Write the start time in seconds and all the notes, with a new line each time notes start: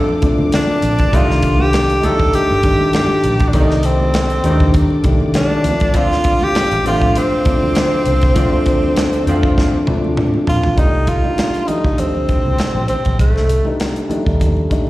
Already playing: F3 A3 C4 D4 A4 C5 F5 D6
0.09 muted conga
0.21 D2 F3 A3 C4 D4, kick, closed hi-hat
0.38 D3, high conga
0.52 D4, snare, closed hi-hat, muted conga
0.67 muted conga, high conga
0.82 A#1, closed hi-hat, low conga
0.98 kick, closed hi-hat, high conga
1.12 C2 A2 D#3 G3 A3 D4 D#4 F4 A4 D5, kick, closed hi-hat, muted conga
1.31 snare
1.43 kick, closed hi-hat
1.58 G4, high conga
1.73 snare, closed hi-hat
1.90 closed hi-hat
2.01 D2 A2 D#3 G3 A3 D4 D#4 A4, closed hi-hat, high conga, low conga
2.20 kick
2.33 G4, muted fingered electric bass stroke, closed hi-hat, muted conga
2.49 G1, muted conga
2.62 D#3 G3 A3 D4, kick, closed hi-hat
2.80 high conga
2.93 G4, snare, closed hi-hat, muted conga
3.09 high conga
3.24 A#1, closed hi-hat, low conga
3.40 kick, closed hi-hat, high conga
3.48 D#3 D4
3.53 C2 A2 D#3 G3 A3 C4 D#4, kick, closed hi-hat, muted conga
3.61 D5
3.71 snare, muted conga
3.83 C4, closed hi-hat
4.00 high conga
4.14 snare, closed hi-hat
4.30 closed hi-hat
4.43 D#2 A2 D3 D#3 G3 A3 D4 D#4, closed hi-hat, high conga, low conga
4.50 D#3
4.60 kick
4.74 kick, closed hi-hat, muted conga
4.90 muted conga
5.03 C2 D#3 G3 A3 D4, kick, closed hi-hat
5.20 C3, high conga
5.34 D4, snare, closed hi-hat
5.50 muted conga, high conga
5.63 D2 F3 A3 C4 D4 C5 F5 D6, closed hi-hat, low conga
5.80 kick, closed hi-hat, high conga
5.94 D3 F3 C4 F4, kick, closed hi-hat
6.11 snare, muted conga
6.24 kick, closed hi-hat
6.41 G4, high conga
6.55 muted fingered electric bass stroke, snare, closed hi-hat
6.71 A1, closed hi-hat, muted conga
6.84 D3 F3 A3 C4 D4 F4, closed hi-hat, high conga, low conga
7.02 kick
7.16 C4, closed hi-hat
7.32 muted conga
7.44 D2 F3 A3 C4 D4, kick, closed hi-hat
7.62 D3, high conga
7.75 snare, closed hi-hat, muted conga
7.92 high conga
8.06 C2, closed hi-hat, low conga
8.22 kick, closed hi-hat, high conga
8.35 D2 D3 F3 A3 C4 D4 F4, kick, closed hi-hat, muted conga
8.54 muted conga
8.66 kick, closed hi-hat
8.83 high conga
8.96 snare, closed hi-hat, muted conga
9.13 closed hi-hat, muted conga
9.26 F2 D3 F3 A3 C4 D4 F4, closed hi-hat, high conga, low conga
9.43 kick
9.58 kick, snare
9.73 muted fingered electric bass stroke, muted conga
9.86 D2 F3 A3 C4 D4, high tom
10.04 high conga
10.17 mid tom
10.34 high conga
10.47 A#1 F4, floor tom, low conga
10.63 floor tom, high conga
10.76 C2 G3 A3 D#4 D5, kick, closed hi-hat, muted conga
10.95 muted conga
11.07 F4, kick, closed hi-hat
11.23 G3 A3 D4 D#4, muted fingered electric bass stroke, high conga
11.38 snare, closed hi-hat
11.54 closed hi-hat
11.66 G3 A3 D4 D#4, muted fingered electric bass stroke, closed hi-hat, high conga, low conga
11.83 D2 G3 A3 D4 D#4, kick
11.98 C4, closed hi-hat, muted conga, low conga
12.15 muted conga
12.29 muted fingered electric bass stroke, kick, closed hi-hat
12.45 C2, high conga
12.58 muted fingered electric bass stroke, snare, closed hi-hat
12.75 A#1, muted conga, high conga
12.88 C4, closed hi-hat, low conga
13.05 A#1, kick, closed hi-hat
13.19 C2 A3, kick, closed hi-hat, muted conga
13.36 snare, muted conga
13.49 closed hi-hat
13.64 G3 A3 D4 D#4, high conga
13.80 snare, closed hi-hat
13.96 closed hi-hat
14.08 G3 A3 D4 D#4, muted fingered electric bass stroke, closed hi-hat, high conga, low conga
14.25 D#2 G3 A3 D4 D#4, kick
14.40 kick, closed hi-hat, muted conga, low conga
14.57 muted conga
14.69 G3 A3 D4 D#4, muted fingered electric bass stroke, kick, closed hi-hat